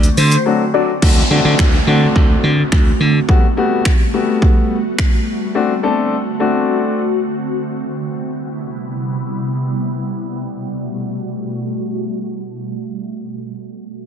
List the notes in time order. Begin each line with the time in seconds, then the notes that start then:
Already playing: D3 A3 C4 F#4
0.03 closed hi-hat, shaker
0.17 D3 C5, open hi-hat, shaker
0.32 closed hi-hat, shaker
0.46 F#3 A3 C4 D4 F#4
0.74 F#3 A3 C4 D4 F#4 D5
1.02 D2 D3 A3 C4 D4 F#4, kick, crash, downlifter
1.30 D3 A3 C4 D4 F#4
1.45 D3
1.59 D2, finger snap, kick
1.87 D3 A3 C4 D4 F#4
2.16 D2, kick
2.43 D3
2.72 D2, finger snap, kick
3.00 D3
3.28 G3 A3 B3 F#4, kick
3.57 G3 A3 B3 F#4
3.85 finger snap, kick
4.13 G3 A3 B3 F#4
4.42 kick
4.98 finger snap, kick
5.55 D3 A3 C4 D4 F#4
5.83 A3 C4 D4 A4
6.40 A3 C4 D4 F#4
7.81 C3 G3 B3 E4
10.08 B2 G3 A3 F#4